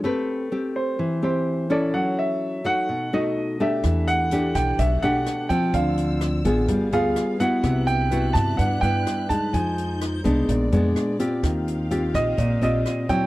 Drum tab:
HH |--------|--------|xxxxxxxx|xxxxxxxx|
SD |--------|--------|r--r--r-|--r---r-|
BD |--------|--------|o--oo--o|o--oo---|

HH |xxxxxxxx|xxxxxxxx|xxxxxxxx|
SD |r--r--r-|--r---r-|r--r--r-|
BD |o--oo--o|o--oo---|o--oo--o|